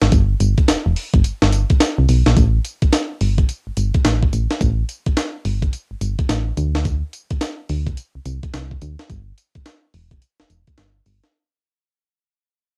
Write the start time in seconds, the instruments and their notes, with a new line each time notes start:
0.02 fm bass G#1, snare, closed hi-hat
0.12 fm bass G1, kick, closed hi-hat, tambourine
0.40 fm bass G1, closed hi-hat, tambourine
0.58 kick, closed hi-hat
0.68 fm bass E1, snare, closed hi-hat, tambourine
0.86 fm bass E1
0.96 open hi-hat
1.14 fm bass G1, kick, closed hi-hat
1.24 fm bass G1, closed hi-hat, tambourine
1.42 fm bass G1, snare
1.53 closed hi-hat, tambourine
1.70 kick, closed hi-hat
1.80 snare, closed hi-hat, tambourine
1.98 fm bass C2
2.09 fm bass B1, open hi-hat, tambourine
2.26 fm bass A#1, snare, closed hi-hat
2.37 fm bass A1, kick, closed hi-hat, tambourine
2.65 closed hi-hat, tambourine
2.82 fm bass G1, kick, closed hi-hat
2.92 snare, closed hi-hat, tambourine
3.21 fm bass G1, open hi-hat
3.38 kick, closed hi-hat
3.49 closed hi-hat, tambourine
3.67 fm bass G1
3.77 fm bass G1, closed hi-hat, tambourine
3.94 kick, closed hi-hat
4.05 fm bass A1, snare, closed hi-hat, tambourine
4.23 kick
4.33 fm bass A1, closed hi-hat, tambourine
4.51 snare, closed hi-hat
4.61 fm bass A1, kick, closed hi-hat, tambourine
4.89 closed hi-hat, tambourine
5.06 fm bass G1, kick, closed hi-hat
5.17 snare, closed hi-hat, tambourine
5.45 fm bass G1, open hi-hat
5.62 kick, closed hi-hat
5.73 closed hi-hat, tambourine
5.91 fm bass G1
6.01 fm bass G1, closed hi-hat, tambourine
6.19 kick, closed hi-hat
6.29 fm bass A1, snare, closed hi-hat, tambourine
6.57 fm bass D2, closed hi-hat, tambourine
6.75 snare, closed hi-hat
6.85 kick, closed hi-hat, tambourine
7.13 closed hi-hat, tambourine
7.30 fm bass D2, kick, closed hi-hat
7.41 snare, closed hi-hat, tambourine
7.69 fm bass D2, open hi-hat
7.87 kick, closed hi-hat
7.97 closed hi-hat, tambourine
8.15 fm bass C2
8.26 fm bass C2, closed hi-hat, tambourine
8.43 kick, closed hi-hat
8.54 fm bass C2, snare, closed hi-hat, tambourine
8.71 kick
8.81 fm bass D2, closed hi-hat, tambourine
8.99 snare, closed hi-hat
9.10 fm bass G1, kick, closed hi-hat, tambourine
9.38 closed hi-hat, tambourine
9.55 fm bass E1, kick, closed hi-hat
9.66 snare, closed hi-hat, tambourine
9.94 fm bass E1, open hi-hat
10.11 kick, closed hi-hat
10.22 closed hi-hat, tambourine
10.40 fm bass E1, snare
10.50 fm bass E1, closed hi-hat, tambourine
10.67 kick, closed hi-hat
10.78 fm bass G1, snare, closed hi-hat, tambourine
11.06 fm bass G1, open hi-hat, tambourine
11.23 snare, closed hi-hat